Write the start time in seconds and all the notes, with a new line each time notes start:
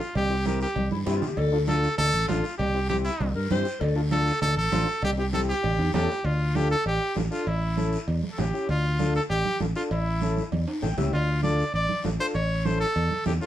Already playing: F4
0.00 short guiro
0.15 C2 G4, cowbell, high conga, low conga, long guiro
0.30 C4 E4 G4
0.45 C4 E4 G4 A#4, cowbell, high conga, short guiro
0.60 G4, short guiro
0.76 C2, cowbell, high conga, long guiro
0.91 G2 E4, high conga
1.06 G2 C4 E4 G4, cowbell, low conga, short guiro
1.17 F4
1.22 low conga, short guiro
1.27 G4
1.37 D2 A4, cowbell, high conga, low conga, long guiro
1.52 D4 F4 A4
1.67 D4 F4 A4, cowbell, high conga, short guiro
1.83 short guiro
1.98 D2 A4, cowbell, high conga, low conga
2.14 A1
2.28 A1 D4 F4 A4, cowbell, high conga, low conga, low timbale, short guiro
2.44 short guiro
2.58 C2 G4, cowbell, high conga, low conga, long guiro
2.74 C4 E4 G4
2.89 C4 E4 G4, cowbell, high conga, short guiro
3.04 E4, short guiro
3.20 C2, cowbell, high conga, low conga, long guiro
3.35 G2 A#4
3.50 G2 C4 E4 G4 C5, cowbell, high conga, short guiro
3.65 short guiro
3.80 D2 A4, cowbell, high conga, low conga, long guiro
3.96 D4 F4 A4
4.11 D4 F4 A4, cowbell, high conga, short guiro
4.26 short guiro
4.42 D2 A4, cowbell, high conga, low conga
4.57 A1 A4
4.72 A1 D4 F4 C5, cowbell, high conga, low timbale, short guiro
4.87 short guiro
5.02 C2 G4, cowbell, high conga, low conga, long guiro
5.17 C4 E4 G4
5.32 C4 E4 G4 A4, cowbell, high conga, short guiro
5.48 G4, short guiro
5.63 A1, cowbell, high conga, low conga, long guiro
5.78 E2, high timbale
5.94 E2 C#4 E4 G4 A4, cowbell, high conga, low timbale, short guiro
6.09 low timbale, short guiro
6.24 D2 F4, cowbell, long guiro
6.55 D4 F4 G4 A4, high conga, short guiro
6.71 A4, short guiro
6.86 A1 G4, cowbell, long guiro
7.15 A1 D4 F4 A4, high conga, low timbale, short guiro
7.31 D4 F4 A4, short guiro
7.47 A1 E4, cowbell, long guiro
7.77 C#4 E4 A4, high conga, short guiro
7.93 short guiro
8.08 E2, cowbell, long guiro
8.23 high conga
8.31 A4
8.38 A1 C#4 E4 G4, high conga, low conga, low timbale, short guiro
8.53 C#4 E4 G4, short guiro
8.69 D2 F4, cowbell, long guiro
8.99 D4 F4 A4, high conga, short guiro
9.15 A4, short guiro
9.30 A1 G4, cowbell
9.45 high conga
9.60 A1 D4 F4 A4, high conga, short guiro
9.75 D4 F4 A4, short guiro
9.91 A1 E4, cowbell, long guiro
10.21 C#4 E4 A4, high conga, short guiro
10.37 high conga, short guiro
10.52 E2, cowbell, high conga, long guiro
10.68 high timbale
10.82 A1 C#4 E4 A4 G5, low conga, short guiro
10.97 C#2 C#4 E4 G4 E5, low conga, low timbale, short guiro
11.13 D2 F4, cowbell, long guiro
11.43 D4 F4 A4 D5, high conga, short guiro
11.59 short guiro
11.74 A1 D5, cowbell, long guiro
11.89 high conga
12.04 A1 D4 F4 A4, high conga, low timbale, short guiro
12.19 D4 F4 A4 C5, short guiro
12.35 A1 C#5, cowbell, long guiro
12.65 C#4 E4 A4 C5, high conga, short guiro
12.80 A4, short guiro
12.96 E2, cowbell
13.11 high conga
13.26 E2 C#4 E4 G4 A4, high conga, low conga, short guiro
13.41 C#4 E4 F4 A4, short guiro